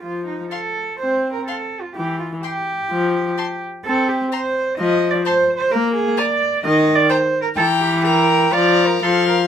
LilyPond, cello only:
\new Staff \with { instrumentName = "Cello" } { \time 4/4 \key bes \major \tempo 4 = 127 f'8 ees'8 a'4 \tuplet 3/2 { c''4 bes'8 a'4 f'8 } | g'8 f'8 g'2~ g'8 r8 | a'8 g'8 c''4 \tuplet 3/2 { ees''4 d''8 c''4 c''8 } | bes'8 aes'8 d''4 \tuplet 3/2 { ees''4 d''8 c''4 bes'8 } |
a'8 g'8 bes'4 \tuplet 3/2 { d''4 bes'8 } a'8 bes'8 | }